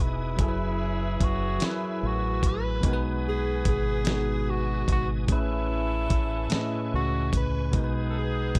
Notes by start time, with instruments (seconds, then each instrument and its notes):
Already playing: tine electric piano B2 B3 D#4 G#4 D#5, tonewheel organ B4 G#5 D#6
0.00 fingered electric bass E1, tenor saxophone E4
0.36 fingered electric bass F#1, tine electric piano F#3 E4 G#4, horn section C#4 E4 G#4, tonewheel organ G#5 E6, kick, closed hi-hat
0.42 tine electric piano A4
0.48 tine electric piano B4
1.20 fingered electric bass F#1, tenor saxophone F#4, kick, closed hi-hat
1.59 tine electric piano F#3 E4 G#4, snare, closed hi-hat
1.64 tenor saxophone E4, tine electric piano A#4
1.71 tine electric piano B4
2.03 fingered electric bass A1, tenor saxophone F#4
2.43 kick, closed hi-hat
2.48 tenor saxophone B4
2.81 fingered electric bass B1, tine electric piano B2 G#3 D#4, horn section F#4 G#4 B4, tonewheel organ B4 G#5 D#6, kick, closed hi-hat
2.87 tine electric piano A#4
2.93 tine electric piano B4
3.28 tenor saxophone G#4
3.65 fingered electric bass G#1, tenor saxophone G#4, kick, closed hi-hat
4.04 tine electric piano B2 G#3 D#4, snare, closed hi-hat
4.10 tine electric piano F#4
4.50 tenor saxophone F#4
4.88 fingered electric bass G#1, kick, closed hi-hat
4.92 tenor saxophone F#4
5.26 fingered electric bass A1, tine electric piano A2 C#4 G#4, horn section C#4 E4 A4, tonewheel organ C#6, kick, closed hi-hat
5.32 tenor saxophone E4, tine electric piano B4
6.10 fingered electric bass A1, kick, closed hi-hat
6.50 tine electric piano A2 G#4, muted fingered electric bass stroke, snare, closed hi-hat
6.54 tine electric piano C#4 D#5, tenor saxophone E4
6.94 fingered electric bass C#2, tenor saxophone F#4
7.33 kick, closed hi-hat
7.37 tenor saxophone B4
7.72 fingered electric bass B1, tine electric piano B2 G#3 D#4, horn section B3 D#4 G#4, tonewheel organ B4 D#6, kick, closed hi-hat
7.77 tine electric piano A#4
7.84 tine electric piano B4
8.10 tenor saxophone A4
8.18 tenor saxophone G#4
8.55 kick, closed hi-hat